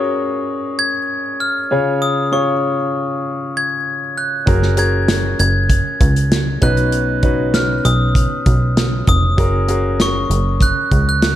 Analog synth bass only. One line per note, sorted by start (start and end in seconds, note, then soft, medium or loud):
4.47 5.35 F#1 medium
5.40 5.82 F#1 medium
6.01 6.58 C#2 medium
6.62 7.81 B1 loud
7.85 8.28 B1 medium
8.46 9.03 B1 medium
9.08 9.36 F1 medium
9.38 10.26 F#1 medium
10.30 10.73 F#1 medium
10.92 11.36 C#2 medium